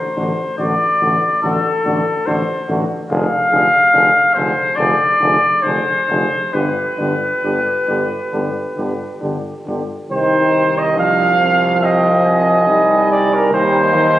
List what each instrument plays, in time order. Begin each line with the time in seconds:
Already playing: trumpet C5
0.17 bass trombone A1, euphonium D3, french horn D4, flugelhorn F#4
0.58 bass trombone A1, euphonium D3, french horn D4, flugelhorn F#4, trumpet D5
1.01 bass trombone A1, euphonium D3, french horn D4, flugelhorn F#4
1.43 bass trombone A1, euphonium D3, french horn D4, flugelhorn F#4, trumpet A4
1.85 bass trombone A1, euphonium D3, french horn D4, flugelhorn F#4
2.26 bass trombone A1, euphonium D3, french horn D4, flugelhorn F#4, trumpet C5
2.68 bass trombone A1, euphonium D3, french horn D4, flugelhorn F#4
3.10 bass trombone F1, euphonium D3, french horn D4, flugelhorn G#4, trumpet F5
3.51 bass trombone F1, euphonium D3, french horn D4, flugelhorn G#4
3.93 bass trombone F1, euphonium D3, french horn D4, flugelhorn G#4
4.34 bass trombone F1, euphonium D3, french horn D4, flugelhorn G#4, trumpet C5
4.76 bass trombone F1, euphonium D3, french horn D4, flugelhorn G#4, trumpet D5
5.20 bass trombone F1, euphonium D3, french horn D4, flugelhorn G#4
5.63 bass trombone F1, euphonium D3, french horn D4, flugelhorn G#4, trumpet C5
6.08 bass trombone F1, euphonium D3, french horn D4, flugelhorn G#4
6.53 bass trombone G1, euphonium D3, french horn D4, flugelhorn G4, trumpet B4
6.98 bass trombone G1, euphonium D3, french horn D4, flugelhorn G4
7.44 bass trombone G1, euphonium D3, french horn D4, flugelhorn G4
7.88 bass trombone G1, euphonium D3, french horn D4, flugelhorn G4
8.33 bass trombone G1, euphonium D3, french horn D4, flugelhorn G4
8.77 bass trombone G1, euphonium D3, french horn D4, flugelhorn G4
9.21 bass trombone G1, euphonium D3, french horn D4, flugelhorn G4
9.67 bass trombone G1, euphonium D3, french horn D4, flugelhorn G4
10.10 bass trombone C2, euphonium D#3, french horn D#4, flugelhorn C5, trumpet G5
10.78 flugelhorn D#5
10.96 euphonium F3, french horn D4, trumpet F5, flugelhorn F5
11.40 french horn C4
11.82 french horn C4, flugelhorn D#5, trumpet G5
12.25 trumpet G#5
12.67 euphonium G3, french horn D#4
13.12 flugelhorn D5
13.34 flugelhorn A#4
13.52 bass trombone D#2, euphonium G3, french horn D#4, flugelhorn C5, trumpet G5
13.95 euphonium D#3